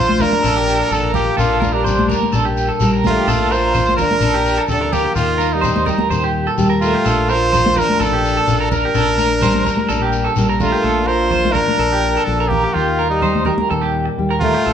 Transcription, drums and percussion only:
0.09 high conga medium
0.20 low conga medium
0.20 shekere medium
0.32 high conga medium
0.44 shekere medium
0.67 shekere medium
0.91 shekere medium
1.14 low conga medium
1.14 shekere medium
1.39 shekere medium
1.62 high conga medium
1.62 low conga medium
1.62 shekere medium
1.85 low conga medium
1.85 shekere medium
1.99 high conga medium
2.10 low conga medium
2.10 shekere medium
2.23 high conga medium
2.33 shekere medium
2.57 shekere medium
2.80 shekere medium
3.04 high conga medium
3.04 low conga medium
3.04 shekere medium
3.28 shekere medium
3.52 shekere medium
3.74 low conga medium
3.74 shekere medium
3.89 high conga medium
3.98 low conga medium
3.98 shekere medium
4.11 high conga medium
4.21 shekere medium
4.46 shekere medium
4.69 shekere medium
4.92 low conga medium
4.92 shekere medium
5.16 shekere medium
5.40 shekere medium
5.64 low conga medium
5.64 shekere medium
5.76 high conga medium
5.86 low conga medium
5.86 shekere medium
5.98 high conga medium
6.11 shekere medium
6.58 shekere medium
6.82 shekere medium
7.05 shekere medium
7.29 shekere medium
7.53 low conga medium
7.53 shekere medium
7.66 high conga medium
7.76 low conga medium
7.76 shekere medium
7.90 high conga medium
8.01 shekere medium
8.25 shekere medium
8.48 shekere medium
8.72 low conga medium
8.72 shekere medium
8.94 shekere medium
9.18 high conga soft
9.18 shekere medium
9.41 low conga medium
9.41 shekere medium
9.54 high conga medium
9.65 low conga medium
9.65 shekere medium
9.77 high conga medium
9.89 shekere medium
10.12 shekere medium
10.36 shekere medium
10.60 low conga medium
10.60 shekere medium
11.31 low conga medium
11.45 high conga medium
11.55 low conga medium
11.68 high conga medium
12.51 low conga medium
13.22 low conga medium
13.35 high conga medium
13.45 low conga medium
13.58 high conga medium
14.41 low conga medium

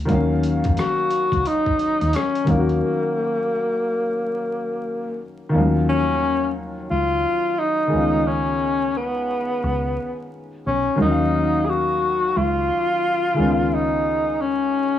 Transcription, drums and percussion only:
0.09 kick loud
0.09 closed hi-hat medium
0.43 closed hi-hat medium
0.64 kick medium
0.64 closed hi-hat soft
0.77 cross-stick loud
0.77 closed hi-hat medium
1.10 closed hi-hat medium
1.32 kick medium
1.32 closed hi-hat soft
1.45 closed hi-hat medium
1.66 kick medium
1.79 closed hi-hat medium
2.01 closed hi-hat soft
2.13 cross-stick loud
2.13 closed hi-hat medium
2.35 closed hi-hat soft
2.47 kick loud
2.47 closed hi-hat medium
2.69 closed hi-hat soft

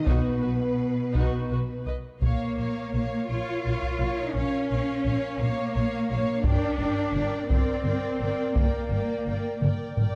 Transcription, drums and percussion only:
0.07 taiko medium
1.15 taiko medium
2.22 taiko medium
3.82 taiko soft
6.44 taiko medium
7.50 taiko medium
8.56 taiko medium
9.62 taiko mid medium
9.97 taiko low-mid medium

